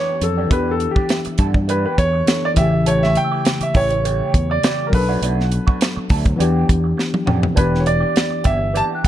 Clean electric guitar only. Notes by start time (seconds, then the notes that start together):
Already playing: G3 B3 D4 G4
0.21 muted clean electric guitar stroke
0.37 G3 B3 D4 G4
0.50 G3 B3 D4 G4
0.79 muted clean electric guitar stroke
0.95 G3 B3 D4 G4
1.26 muted clean electric guitar stroke
1.38 G3 B3 D4 A4
1.55 muted clean electric guitar stroke
1.68 G3 B3 D4 G4
1.98 muted clean electric guitar stroke
2.13 muted clean electric guitar stroke
2.27 muted clean electric guitar stroke
2.56 E3 A3 C#4 G4
2.72 muted clean electric guitar stroke
2.87 E3 A3 C#4 G4
3.16 muted clean electric guitar stroke
3.31 E3 A3 C#4 G4
3.62 muted clean electric guitar stroke
3.74 E3 A3 C#4 G4
3.91 muted clean electric guitar stroke
4.04 E3 A3 C#4 G4
4.34 muted clean electric guitar stroke
4.50 muted clean electric guitar stroke
4.64 E3 A3 C#4 G4
4.93 muted clean electric guitar stroke
5.09 F#3 A3 D4 F#4
5.22 F#3 A3 D4 F#4
5.51 muted clean electric guitar stroke
5.67 F#3 A3 D4 F#4
5.96 muted clean electric guitar stroke
6.10 F#3 A3 D4 A4
6.25 muted clean electric guitar stroke
6.39 E3 B3 D4 G4
6.68 muted clean electric guitar stroke
6.84 muted clean electric guitar stroke
6.97 muted clean electric guitar stroke
7.26 E3 B3 D4 G4
7.42 muted clean electric guitar stroke
7.55 E3 B3 D4 G4
7.85 muted clean electric guitar stroke
8.00 E3 B3 D4 G4
8.30 muted clean electric guitar stroke
8.44 E3 B3 D4 G4
8.59 muted clean electric guitar stroke
8.73 E3 B3 D4 G4
9.04 muted clean electric guitar stroke